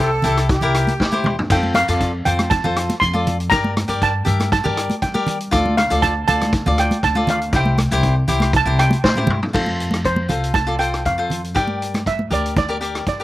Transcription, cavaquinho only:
0.24 E4 G4 A4
0.62 E4 G4 A#4
1.12 E4 G4 C5
1.51 F4 A4 C5
1.88 F4 A4 D5
2.25 F4 A4 C5
2.64 F4 A4 C5
3.13 F4 A4 D5
3.50 G4 A#4 D5
3.88 G4 A#4 D5
4.25 G4 A#4 E5
4.64 G4 A#4 D5
5.14 G4 A#4 D5
5.51 F4 A4 D5
5.90 F4 A4 D5
6.28 F4 A4 D5
6.66 F4 A4 D5
7.15 F4 A4 D5
7.54 E4 G4 C5
7.92 E4 G4 C5
8.28 E4 G4 C5
8.66 E4 G4 C5
9.17 E4 G4 C5
9.53 F4 A4 C5
10.29 F4 A4 C5
10.67 F4 A4 D5
10.79 F4 A4 C5
11.18 F4 A4 C5
11.55 G4 A#4 D5
12.31 G4 A#4 D5
12.69 G4 A#4 D5
12.81 G4 A#4 D5
13.20 G4 D5

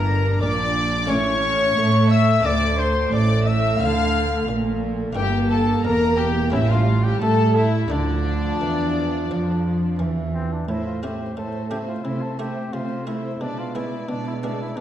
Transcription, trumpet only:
Already playing: A#4
0.41 D5
1.10 C#5
2.11 E5
2.46 D5
2.79 C5
3.14 D5
3.47 E5
3.81 F5
5.16 G4
5.51 A4
5.85 A#4
6.18 G4
6.52 E4
6.70 F4
7.04 G4
7.22 A4
7.56 E4
7.92 D4
10.35 C4
10.52 D4
10.68 E4
10.86 F4
11.03 G4
11.37 A4
11.71 G4
11.88 F4
12.04 E4
12.22 A4
12.39 G4
12.73 F4
13.07 E4
13.41 D4
13.59 F4
13.75 E4
14.09 D4
14.27 E4
14.43 D4
14.61 E4
14.77 D4

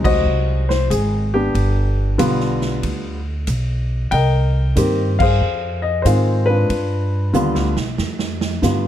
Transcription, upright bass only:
Already playing: D2
0.25 C2
0.90 G#1
1.55 G1
2.19 B1
2.83 D2
3.48 B1
4.12 C2
4.76 G2
5.41 F2
6.05 G#2
6.70 G2
7.34 D#2
7.55 D2
7.76 B1
7.98 F2
8.63 G2

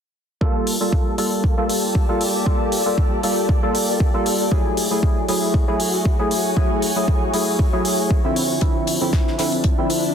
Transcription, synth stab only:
0.41 G3 A#3 F4 A4
0.80 G3 A#3 F4 A4
1.18 G3 A#3 F4 A4
1.57 G3 A#3 F4 A4
2.09 G3 A#3 F4 A4
2.46 G3 A#3 F4 A4
2.86 G3 A#3 F4 A4
3.23 G3 A#3 F4 A4
3.62 G3 A#3 F4 A4
4.14 G3 A#3 F4 A4
4.51 F#3 A3 E4 G#4
4.91 F#3 A3 E4 G#4
5.28 F#3 A3 E4 G#4
5.68 F#3 A3 E4 G#4
6.19 F#3 A3 E4 G#4
6.56 F#3 A3 E4 G#4
6.96 F#3 A3 E4 G#4
7.33 F#3 A3 E4 G#4
7.73 F#3 A3 E4 G#4
8.24 D3 F3 C4 E4
8.62 D3 F3 C4 E4
9.01 D3 F3 C4 E4
9.39 D3 F3 C4 E4
9.78 D3 F3 C4 E4

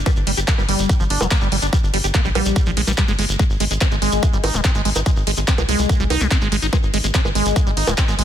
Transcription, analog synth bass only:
0.17 G1
0.27 G1
0.37 G1
0.58 G1
0.69 G1
0.79 G1
1.00 G1
1.10 G1
1.21 F1
1.42 G1
1.52 G1
1.62 G1
1.83 G1
1.94 G1
2.04 G1
2.25 A#1
2.35 A#1
2.46 A#1
2.67 A#1
2.77 A#1
2.87 A#1
3.08 G1
3.19 G1
3.29 G1
3.50 G#1
3.60 G#1
3.71 G#1
3.92 G#1
4.02 G#1
4.12 G#1
4.33 G#1
4.44 G#1
4.54 D#1
4.75 G#1
4.85 G#1
4.96 G#1
5.17 G#1
5.27 G#1
5.37 G#1
5.58 C2
5.69 C2
5.79 C2
6.00 C2
6.10 C2
6.21 C2
6.42 G#1
6.52 G#1
6.62 G#1
6.83 G#1
6.94 G#1
7.04 G#1
7.25 G#1
7.35 G#1
7.46 G#1
7.67 G#1
7.77 G#1
7.87 D#1
8.08 G#1
8.19 G#1

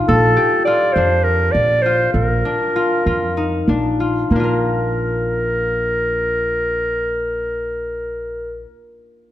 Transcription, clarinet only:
0.08 A4
0.65 D5
0.93 C5
1.24 A#4
1.52 D5
1.82 C5
2.13 A#4
4.31 A#4

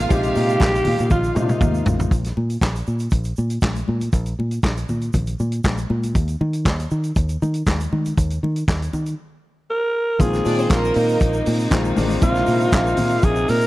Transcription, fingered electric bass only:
0.11 A#1
0.36 A#2
0.61 A#1
0.87 A#2
1.00 A#2
1.11 A#1
1.37 A#2
1.61 D#2
1.87 A1
2.12 A#1
2.37 A#2
2.62 A#1
2.88 A#2
3.12 A#1
3.38 A#2
3.62 A#1
3.89 A#2
4.13 A#1
4.39 A#2
4.63 A#1
4.90 A#2
5.14 A#1
5.40 A#2
5.64 A#1
5.90 A#2
6.15 D#2
6.41 D#3
6.66 D#2
6.91 D#3
7.16 D#2
7.42 D#3
7.67 D#2
7.93 D#3
8.18 D#2
8.43 D#3
8.68 D#2
8.94 D#3
10.20 A#1
10.46 A#2
10.71 A#1
10.96 A#2
11.21 A#1
11.47 A#2
11.72 A#1
11.98 A1
12.22 A#1
12.48 A#2
12.73 A#1
12.99 A#2
13.24 A#1
13.49 A#2

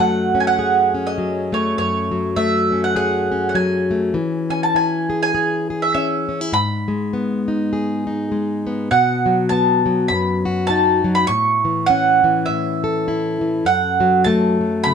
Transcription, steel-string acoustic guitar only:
Already playing: F#2 F#3 C#4
0.00 A3
0.35 C#4
0.59 G#4
0.94 C#4
1.18 F#3
1.52 A3
1.78 F#2
2.11 F#3
2.37 A3
2.72 C#4
2.96 G#4
3.32 C#4
3.55 F#3
3.91 A3
4.14 E3
4.50 C#4
4.75 E4
5.10 G#4
5.35 G#4
5.70 G#4
5.95 C#4
6.29 C#4
6.41 E4
6.52 G#2
6.88 G#3
7.13 B3
7.48 D#4
7.73 G#4
8.07 D#4
8.32 G#3
8.67 B3
8.91 B2
9.26 F#3
9.51 B3
9.86 F#3
10.10 F#2
10.45 F#4
10.70 D#4
11.04 F#3
11.29 A2
11.65 E3
11.90 C#4
12.24 E3
12.48 A2
12.84 A4
13.08 E4
13.41 E3
13.65 F#2
14.00 F#3
14.26 A3
14.61 F#3
14.86 C#3

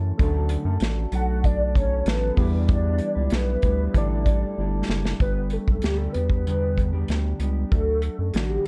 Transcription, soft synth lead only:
1.15 F#5
1.45 D5
1.77 C#5
2.09 B4
2.72 D5
3.35 B4
3.97 D5
5.21 B4
5.53 A4
5.83 G4
5.97 A4
6.12 B4
7.71 A4
8.34 F#4
8.50 G4

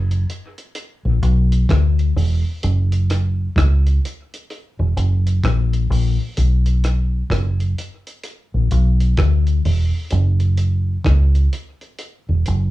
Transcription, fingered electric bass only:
Already playing: F#1
1.05 A#1
1.22 B1
1.69 D2
2.16 E1
2.64 F#1
3.57 C#2
4.79 E1
4.97 F#1
5.44 A#1
5.90 A#1
6.38 B1
7.30 F#1
8.54 A#1
8.71 B1
9.18 D2
9.65 E1
10.12 F#1
11.05 C#2
12.29 E1
12.47 F#1

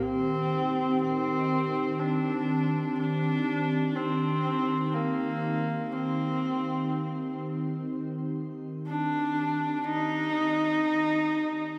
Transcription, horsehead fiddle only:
0.02 C4
1.01 C4
1.99 D4
2.98 D4
3.96 C4
4.94 A#3
5.92 C4
8.87 D4
9.84 D#4

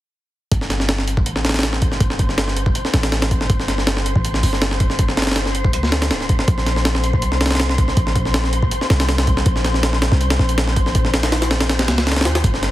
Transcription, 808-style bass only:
0.52 G1
1.26 A1
2.00 G1
2.94 A1
3.50 G1
4.16 A1
4.43 G1
5.74 D2
6.11 D1
6.48 A#1
7.22 C2
7.97 A#1
8.90 C2
9.46 A#1
10.12 C2
10.39 A#1
11.88 C#2
12.25 D#2
12.44 G1

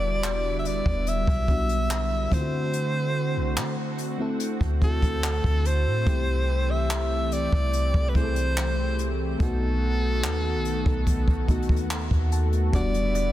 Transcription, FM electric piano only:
Already playing: G3 B3 D4 F#4
1.47 G3 B3 D4 F#4
2.31 A3 C4 E4 F4
2.41 F#4
4.18 A3 C4 E4 A4
4.81 A3 C4 E4 F#4
6.06 A3 C4 E4 G4
8.14 A3 C4 E4 G#4
8.24 A4
9.39 A3 B3 D#4 F#4
10.85 A3 B3 D#4 A4
11.47 A3 B3 D#4 F#4
11.91 F#5
12.32 A5
12.72 G3 B3 D4 F#4

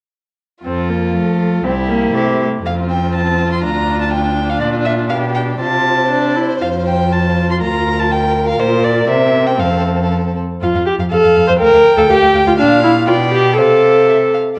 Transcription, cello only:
0.64 F2
1.14 F3
1.64 C2
2.13 C3
2.65 F2
3.64 D2
4.61 A#2
5.11 B2
5.60 C3
6.61 F2
7.62 D2
8.59 A#2
9.09 C3
9.60 F2
10.62 F2
10.75 F2
10.99 F2
11.12 F2
11.25 F2
11.37 F2
11.50 F2
11.62 D2
11.74 D2
11.98 D2
12.10 D2
12.23 D2
12.34 D2
12.47 D2
12.59 A#2
13.08 B2
13.58 C3

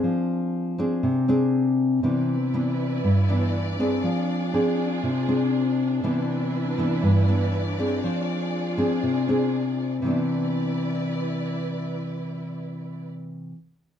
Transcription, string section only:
2.02 D4 E4 B4 D5
4.04 F4 G#4
6.03 E4 B4 D5
8.02 F4 G#4
10.02 E4 B4 D5

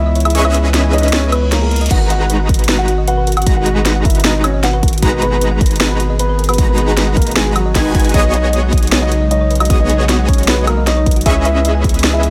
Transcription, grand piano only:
Already playing: E4 E5
0.25 E4 E5
0.45 E4 E5
0.93 D#4 D#5
1.13 C#4 C#5
1.32 B3 B4
1.52 A#3 A#4
1.91 F#4 F#5
2.10 F#4 F#5
2.79 F#4 F#5
3.08 F#4 F#5
3.37 F#4 F#5
3.56 F#4 F#5
4.05 E4 E5
4.24 D#4 D#5
4.44 C#4 C#5
4.63 F#4 F#5
5.03 B3 B4
5.22 B3 B4
5.90 B3 B4
6.19 B3 B4
6.49 B3 B4
6.68 B3 B4
7.17 A#3 A#4
7.36 G#3 G#4
7.56 F#3 F#4
7.75 D#3 D#4
8.14 D#4 D#5
8.34 D#4 D#5
9.02 D#4 D#5
9.31 D#4 D#5
9.60 D#4 D#5
9.80 D#4 D#5
10.28 C#4 C#5
10.48 B3 B4
10.67 A#3 A#4
10.87 D#4 D#5
11.26 E4 E5
11.45 E4 E5
12.14 E4 E5

